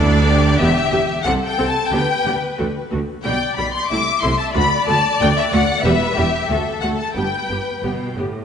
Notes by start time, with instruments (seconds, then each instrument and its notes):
Already playing: cello section D2, double bass section D2, viola section D4, violin section A4 D5
0.26 violin section G4
0.58 double bass section E1, cello section E2, viola section B3 G4, violin section E5
0.92 double bass section E1, cello section E2, viola section B3 G4
1.24 double bass section C2, cello section C3, viola section C4 A4, violin section A4 F#5
1.46 violin section G5
1.58 double bass section C2, cello section C3, viola section C4 A4
1.68 violin section A5
1.89 double bass section D2, cello section D3, viola section B3 G4, violin section B4 G5
2.25 double bass section D2, cello section D3, viola section B3 G4
2.58 double bass section D2, cello section D3, viola section A3 F#4
2.91 double bass section D2, cello section D3, viola section A3 F#4
3.24 double bass section B1, cello section B2, viola section G3 G4, violin section D5 G5
3.56 double bass section B1, cello section B2, viola section G3 G4, violin section B5
3.73 violin section C6
3.89 double bass section C2, cello section C3, viola section A3 E4, violin section E5 D6
4.22 double bass section C2, cello section C3, viola section A3 E4, violin section C6
4.39 violin section A5
4.54 double bass section D2, cello section D2, viola section A3 F#4, violin section D5 B5
4.87 double bass section D2, cello section D2, viola section A3 F#4, violin section A5
5.21 double bass section D2, cello section D2, viola section A3 F#4, violin section G5
5.38 violin section E5
5.52 double bass section D2, cello section D2, viola section A3 F#4, violin section F#5
5.83 double bass section E1, cello section E2, viola section G3 G4, violin section B4 E5
6.16 double bass section E1, cello section E2, viola section G3 G4, violin section G4
6.49 double bass section D2, cello section D2, viola section A3 F#4, violin section A4
6.81 double bass section D2, cello section D2, viola section A3 F#4, violin section F#5
6.97 violin section A5
7.14 double bass section G1, cello section G2, viola section B3 G4, violin section B4 G5
7.49 double bass section G1, cello section G2, viola section B3 G4
7.82 double bass section G1, cello section B2, viola section B3 G4
8.16 double bass section G1, cello section A2, viola section B3 G4